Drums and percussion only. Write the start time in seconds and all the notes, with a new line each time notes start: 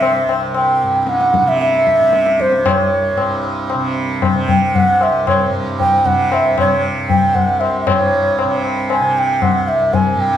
0.02 tabla na
0.29 tabla na
0.55 tabla na
1.07 tabla te
1.21 tabla te
1.34 tabla ke
1.48 tabla te
1.61 tabla te
1.74 tabla te
1.87 tabla ke
2.00 tabla te
2.13 tabla te
2.27 tabla te
2.40 tabla ke
2.52 tabla te
2.66 tabla na, tabla ge
3.18 tabla na
3.43 tabla na
3.70 tabla na
4.22 tabla na, tabla ge
4.48 tabla tin, tabla ge
4.75 tabla tin, tabla ge
5.01 tabla na
5.27 tabla na, tabla ge
5.80 tabla tin, tabla ge
6.05 tabla tin, tabla ge
6.32 tabla na
6.58 tabla na, tabla ge
7.10 tabla tin, tabla ge
7.35 tabla tin, tabla ge
7.61 tabla na
7.87 tabla na, tabla ge
8.39 tabla na
8.64 tabla na
8.90 tabla na
9.42 tabla na, tabla ge
9.93 tabla tin, tabla ge